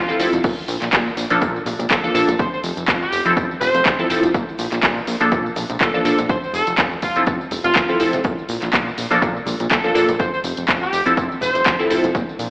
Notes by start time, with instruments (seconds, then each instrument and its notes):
Already playing: horn section F4
0.08 analog polysynth F3 C4 E4 A4, tambourine, high conga
0.19 analog synth bass F1, analog polysynth F3 C4 E4 A4, open hi-hat, tambourine, shaker
0.33 analog synth bass F1, closed hi-hat, tambourine, low conga, shaker
0.44 analog synth bass A#2, kick, closed hi-hat, crash, tambourine
0.58 tambourine
0.68 analog synth bass A#1, open hi-hat, tambourine, shaker
0.82 analog synth bass A#1, clap, closed hi-hat, tambourine, shaker
0.93 analog synth bass A#2, kick, clap, closed hi-hat, tambourine
1.07 tambourine
1.17 analog synth bass A#1, open hi-hat, tambourine, shaker
1.30 analog synth bass A#1, analog polysynth F3 A#3 D4 A4, closed hi-hat, tambourine, shaker
1.41 analog synth bass A#2, analog polysynth F3 A#3 D4 A4, kick, closed hi-hat, tambourine
1.56 tambourine
1.66 analog synth bass A#1, open hi-hat, tambourine, low conga, shaker
1.79 analog synth bass A#1, closed hi-hat, tambourine, low conga, shaker
1.90 analog synth bass A#2, horn section A4, kick, clap, closed hi-hat, tambourine, shaker
2.03 analog polysynth F3 A#3 D4 A4, tambourine, high conga
2.14 analog synth bass A#1, analog polysynth F3 A#3 D4 A4, open hi-hat, tambourine, shaker
2.28 analog synth bass A#1, closed hi-hat, tambourine, low conga, shaker
2.39 analog synth bass F2, horn section C5, kick, closed hi-hat, tambourine, shaker
2.53 horn section C5, tambourine
2.63 analog synth bass F1, open hi-hat, tambourine, shaker
2.77 analog synth bass F1, closed hi-hat, tambourine, shaker
2.88 analog synth bass F2, kick, clap, closed hi-hat, tambourine
3.02 horn section G4, tambourine
3.12 analog synth bass F1, open hi-hat, tambourine, shaker
3.25 analog synth bass F1, analog polysynth F3 C4 E4 A4, closed hi-hat, tambourine, shaker
3.36 analog synth bass F2, analog polysynth F3 C4 E4 A4, kick, closed hi-hat, tambourine
3.50 analog synth bass F1, tambourine
3.61 analog synth bass F1, horn section C5, open hi-hat, tambourine, low conga, shaker
3.74 analog synth bass F1, closed hi-hat, tambourine, low conga, shaker
3.86 analog synth bass F2, kick, clap, closed hi-hat, tambourine, shaker
3.98 analog polysynth F3 C4 E4 A4, tambourine, high conga
4.09 analog synth bass F1, analog polysynth F3 C4 E4 A4, open hi-hat, tambourine, shaker
4.23 analog synth bass F1, closed hi-hat, tambourine, low conga, shaker
4.34 analog synth bass A#2, kick, closed hi-hat, tambourine, shaker
4.49 tambourine
4.58 analog synth bass A#1, open hi-hat, tambourine, shaker
4.72 analog synth bass A#1, clap, closed hi-hat, tambourine, shaker
4.83 analog synth bass A#2, kick, clap, closed hi-hat, tambourine
4.97 tambourine
5.07 analog synth bass A#1, open hi-hat, tambourine, shaker
5.20 analog synth bass A#1, analog polysynth F3 A#3 D4 A4, closed hi-hat, tambourine
5.31 analog synth bass A#2, analog polysynth F3 A#3 D4 A4, kick, closed hi-hat, tambourine
5.46 tambourine
5.55 analog synth bass A#1, open hi-hat, tambourine, low conga, shaker
5.69 analog synth bass A#1, closed hi-hat, tambourine, low conga, shaker
5.81 analog synth bass A#2, horn section A4, kick, clap, closed hi-hat, tambourine
5.94 analog polysynth F3 A#3 D4 A4, tambourine, high conga
6.04 analog synth bass A#1, analog polysynth F3 A#3 D4 A4, open hi-hat, tambourine, shaker
6.18 analog synth bass A#1, closed hi-hat, tambourine, low conga, shaker
6.29 analog synth bass F2, horn section C5, kick, closed hi-hat, tambourine, shaker
6.43 horn section C5, tambourine
6.53 analog synth bass F1, horn section A4, open hi-hat, tambourine, shaker
6.67 analog synth bass F1, closed hi-hat, tambourine, shaker
6.78 analog synth bass F2, kick, clap, closed hi-hat, tambourine
6.92 tambourine
7.02 analog synth bass F1, horn section F4, kick, open hi-hat, tambourine, shaker
7.16 analog synth bass F1, analog polysynth F3 C4 E4 A4, closed hi-hat, tambourine, shaker
7.27 analog synth bass F2, analog polysynth F3 C4 E4 A4, kick, closed hi-hat, tambourine, shaker
7.40 analog synth bass F1, tambourine
7.51 analog synth bass F1, open hi-hat, tambourine, low conga, shaker
7.64 analog synth bass F1, horn section F4, closed hi-hat, tambourine, low conga, shaker
7.75 analog synth bass F2, kick, clap, closed hi-hat, tambourine
7.89 analog polysynth F3 C4 E4 A4, tambourine, high conga
7.99 analog synth bass F1, analog polysynth F3 C4 E4 A4, open hi-hat, tambourine, shaker
8.13 analog synth bass F1, closed hi-hat, tambourine, low conga, shaker
8.24 analog synth bass A#2, kick, closed hi-hat, tambourine
8.38 tambourine
8.48 analog synth bass A#1, open hi-hat, tambourine, shaker
8.62 analog synth bass A#1, clap, closed hi-hat, tambourine, shaker
8.73 analog synth bass A#2, kick, clap, closed hi-hat, tambourine
8.88 tambourine
8.97 analog synth bass A#1, open hi-hat, tambourine, shaker
9.10 analog synth bass A#1, analog polysynth F3 A#3 D4 A4, closed hi-hat, tambourine, shaker
9.21 analog synth bass A#2, analog polysynth F3 A#3 D4 A4, kick, closed hi-hat, tambourine, shaker
9.36 tambourine
9.46 analog synth bass A#1, open hi-hat, tambourine, low conga, shaker
9.60 analog synth bass A#1, closed hi-hat, tambourine, low conga, shaker
9.71 analog synth bass A#2, horn section A4, kick, clap, closed hi-hat, tambourine
9.83 analog polysynth F3 A#3 D4 A4, tambourine, high conga
9.94 analog synth bass A#1, analog polysynth F3 A#3 D4 A4, open hi-hat, tambourine, shaker
10.09 analog synth bass A#1, closed hi-hat, tambourine, low conga, shaker
10.20 analog synth bass F2, horn section C5, kick, closed hi-hat, tambourine, shaker
10.34 horn section C5, tambourine
10.44 analog synth bass F1, open hi-hat, tambourine, shaker
10.57 analog synth bass F1, closed hi-hat, tambourine, shaker
10.68 analog synth bass F2, kick, clap, closed hi-hat, tambourine
10.82 horn section G4, tambourine
10.92 analog synth bass F1, open hi-hat, tambourine, shaker
11.05 analog synth bass F1, analog polysynth F3 C4 E4 A4, closed hi-hat, tambourine, shaker
11.17 analog synth bass F2, analog polysynth F3 C4 E4 A4, kick, closed hi-hat, tambourine, shaker
11.31 analog synth bass F1, tambourine
11.41 analog synth bass F1, horn section C5, open hi-hat, tambourine, low conga, shaker
11.55 analog synth bass F1, closed hi-hat, tambourine, low conga, shaker
11.66 analog synth bass F2, kick, clap, closed hi-hat, tambourine, shaker
11.79 analog polysynth F3 C4 E4 A4, tambourine, high conga
11.90 analog synth bass F1, analog polysynth F3 C4 E4 A4, open hi-hat, tambourine, shaker
12.03 analog synth bass F1, closed hi-hat, tambourine, low conga, shaker
12.14 analog synth bass A#2, kick, closed hi-hat, tambourine, shaker
12.29 tambourine
12.39 analog synth bass A#1, open hi-hat, tambourine, shaker